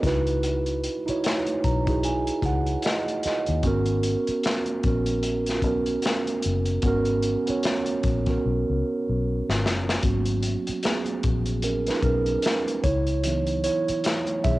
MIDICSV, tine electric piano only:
0, 0, Header, 1, 2, 480
1, 0, Start_track
1, 0, Key_signature, 5, "minor"
1, 0, Tempo, 800000
1, 260, Time_signature, 4, 2, 24, 8
1, 8755, End_track
2, 0, Start_track
2, 0, Title_t, "Tine electric piano"
2, 0, Program_c, 0, 4
2, 0, Control_c, 0, 64, 127
2, 13, Note_on_c, 0, 63, 77
2, 24, Note_on_c, 0, 64, 66
2, 27, Control_c, 0, 64, 0
2, 30, Note_on_c, 0, 66, 71
2, 40, Note_on_c, 0, 71, 89
2, 149, Control_c, 0, 64, 127
2, 568, Note_off_c, 0, 63, 0
2, 574, Note_off_c, 0, 64, 0
2, 577, Note_off_c, 0, 66, 0
2, 582, Note_off_c, 0, 71, 0
2, 634, Note_on_c, 0, 63, 72
2, 643, Note_on_c, 0, 64, 66
2, 653, Note_on_c, 0, 66, 61
2, 659, Note_on_c, 0, 73, 76
2, 986, Note_on_c, 0, 82, 57
2, 1063, Note_off_c, 0, 63, 0
2, 1067, Note_off_c, 0, 64, 0
2, 1072, Note_off_c, 0, 66, 0
2, 1075, Note_off_c, 0, 73, 0
2, 1112, Note_on_c, 0, 63, 67
2, 1122, Note_on_c, 0, 64, 62
2, 1129, Note_on_c, 0, 66, 58
2, 1137, Note_on_c, 0, 68, 72
2, 1207, Note_off_c, 0, 82, 0
2, 1230, Note_on_c, 0, 80, 56
2, 1449, Note_off_c, 0, 80, 0
2, 1474, Note_on_c, 0, 78, 61
2, 1691, Note_off_c, 0, 78, 0
2, 1711, Note_on_c, 0, 75, 56
2, 1929, Note_off_c, 0, 75, 0
2, 1954, Note_on_c, 0, 75, 59
2, 1966, Note_off_c, 0, 63, 0
2, 1971, Note_off_c, 0, 64, 0
2, 1975, Note_off_c, 0, 66, 0
2, 1979, Note_off_c, 0, 68, 0
2, 2171, Note_off_c, 0, 75, 0
2, 2177, Note_on_c, 0, 59, 90
2, 2186, Note_on_c, 0, 61, 84
2, 2189, Control_c, 0, 64, 0
2, 2194, Note_on_c, 0, 66, 92
2, 2204, Note_on_c, 0, 70, 104
2, 2310, Control_c, 0, 64, 127
2, 2840, Note_off_c, 0, 59, 0
2, 2845, Note_off_c, 0, 61, 0
2, 2849, Note_off_c, 0, 66, 0
2, 2854, Note_off_c, 0, 70, 0
2, 2900, Note_on_c, 0, 59, 63
2, 2909, Note_on_c, 0, 61, 62
2, 2917, Note_on_c, 0, 66, 63
2, 2924, Note_on_c, 0, 70, 74
2, 3341, Note_off_c, 0, 59, 0
2, 3346, Note_off_c, 0, 61, 0
2, 3350, Note_off_c, 0, 66, 0
2, 3353, Note_off_c, 0, 70, 0
2, 3376, Note_on_c, 0, 59, 70
2, 3383, Note_on_c, 0, 61, 64
2, 3391, Note_on_c, 0, 66, 70
2, 3400, Note_on_c, 0, 70, 81
2, 4040, Note_off_c, 0, 59, 0
2, 4043, Note_off_c, 0, 61, 0
2, 4047, Note_off_c, 0, 66, 0
2, 4052, Note_off_c, 0, 70, 0
2, 4099, Note_on_c, 0, 59, 96
2, 4107, Note_on_c, 0, 61, 83
2, 4115, Note_on_c, 0, 66, 85
2, 4125, Note_on_c, 0, 70, 107
2, 4439, Note_off_c, 0, 59, 0
2, 4443, Note_off_c, 0, 61, 0
2, 4447, Note_off_c, 0, 66, 0
2, 4452, Note_off_c, 0, 70, 0
2, 4476, Note_on_c, 0, 59, 67
2, 4485, Note_on_c, 0, 61, 66
2, 4494, Note_on_c, 0, 66, 64
2, 4501, Note_on_c, 0, 73, 72
2, 4904, Note_off_c, 0, 59, 0
2, 4908, Note_off_c, 0, 61, 0
2, 4912, Note_off_c, 0, 66, 0
2, 4916, Note_off_c, 0, 73, 0
2, 4957, Note_on_c, 0, 59, 64
2, 4965, Note_on_c, 0, 61, 61
2, 4973, Note_on_c, 0, 66, 60
2, 4980, Note_on_c, 0, 70, 68
2, 5809, Note_off_c, 0, 59, 0
2, 5813, Note_off_c, 0, 61, 0
2, 5817, Note_off_c, 0, 66, 0
2, 5821, Note_off_c, 0, 70, 0
2, 6027, Control_c, 0, 64, 0
2, 6029, Note_on_c, 0, 54, 46
2, 6030, Note_on_c, 0, 66, 72
2, 6032, Note_on_c, 0, 58, 57
2, 6033, Note_on_c, 0, 59, 46
2, 6037, Note_on_c, 0, 61, 55
2, 6127, Control_c, 0, 64, 127
2, 6360, Note_off_c, 0, 54, 0
2, 6362, Note_off_c, 0, 59, 0
2, 6364, Note_off_c, 0, 61, 0
2, 6485, Note_off_c, 0, 58, 0
2, 6508, Note_on_c, 0, 68, 73
2, 6518, Note_on_c, 0, 59, 60
2, 6520, Note_off_c, 0, 66, 0
2, 6965, Note_off_c, 0, 59, 0
2, 6985, Note_on_c, 0, 70, 75
2, 6994, Note_on_c, 0, 61, 57
2, 6998, Note_off_c, 0, 68, 0
2, 7119, Note_off_c, 0, 61, 0
2, 7127, Note_off_c, 0, 70, 0
2, 7130, Note_on_c, 0, 71, 78
2, 7139, Note_on_c, 0, 63, 59
2, 7173, Note_off_c, 0, 71, 0
2, 7180, Note_off_c, 0, 63, 0
2, 7228, Note_on_c, 0, 70, 85
2, 7236, Note_on_c, 0, 61, 64
2, 7685, Note_off_c, 0, 61, 0
2, 7702, Note_on_c, 0, 73, 86
2, 7709, Control_c, 0, 64, 0
2, 7716, Note_on_c, 0, 64, 72
2, 7719, Note_off_c, 0, 70, 0
2, 7800, Control_c, 0, 64, 127
2, 7949, Note_on_c, 0, 52, 47
2, 7951, Note_on_c, 0, 54, 45
2, 7956, Note_on_c, 0, 59, 47
2, 7957, Note_on_c, 0, 63, 58
2, 8164, Note_off_c, 0, 64, 0
2, 8176, Note_off_c, 0, 73, 0
2, 8183, Note_on_c, 0, 73, 89
2, 8195, Note_on_c, 0, 64, 63
2, 8280, Note_off_c, 0, 52, 0
2, 8281, Note_off_c, 0, 54, 0
2, 8284, Note_off_c, 0, 59, 0
2, 8284, Note_off_c, 0, 63, 0
2, 8644, Note_off_c, 0, 64, 0
2, 8664, Note_on_c, 0, 76, 91
2, 8669, Note_on_c, 0, 52, 42
2, 8670, Note_on_c, 0, 54, 38
2, 8672, Note_on_c, 0, 51, 46
2, 8672, Note_on_c, 0, 59, 40
2, 8675, Note_on_c, 0, 68, 66
2, 8676, Note_off_c, 0, 73, 0
2, 8755, Note_off_c, 0, 51, 0
2, 8755, Note_off_c, 0, 52, 0
2, 8755, Note_off_c, 0, 54, 0
2, 8755, Note_off_c, 0, 59, 0
2, 8755, Note_off_c, 0, 68, 0
2, 8755, Note_off_c, 0, 76, 0
2, 8755, End_track
0, 0, End_of_file